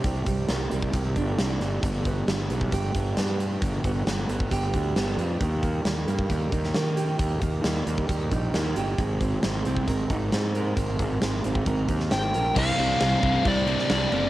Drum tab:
CC |----------------|----------------|----------------|----------------|
HH |x-x-x-x-x-x-x-x-|x-x-x-x-x-x-x-x-|x-x-x-x-x-x-x-x-|x-x-x-x-x-x-x-x-|
SD |----o-------o-o-|----o-------o---|----o-------o---|----o------oo---|
BD |o-o----oo-o-----|o-o----oo-o-----|o-o----oo-o-----|o-o----oo-o-----|

CC |----------------|----------------|----------------|x-x-x-x-x-x-x-x-|
HH |x-x-x-x-x-x-x-x-|x-x-x-x-x-x-x-x-|x-x-x-x-x-x-x-x-|----------------|
SD |----o-------o---|----o-------o---|----o------oo---|----o------oo---|
BD |o-o----oo-o-----|o-o----oo-o-----|o-o----oo-o-----|o-----o-o-------|